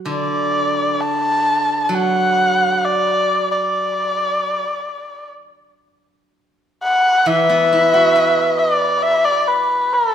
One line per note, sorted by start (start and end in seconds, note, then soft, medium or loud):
0.00 0.97 F#3 soft
0.06 2.81 D3 soft
0.06 1.03 D5 medium
1.01 1.85 A5 medium
1.85 1.96 A5 soft
1.89 4.62 F#3 soft
1.95 2.87 F#5 medium
2.85 3.51 D5 medium
3.52 5.27 D5 medium
6.84 7.29 F#5 medium
7.26 9.94 E3 soft
7.26 8.60 E5 medium
7.49 9.27 B3 soft
7.73 9.50 E4 soft
7.94 9.72 F#4 soft
8.16 9.94 B4 soft
8.59 9.04 D5 medium
9.03 9.26 E5 medium
9.25 9.49 D5 medium
9.48 9.95 B4 medium
9.93 10.15 A4 medium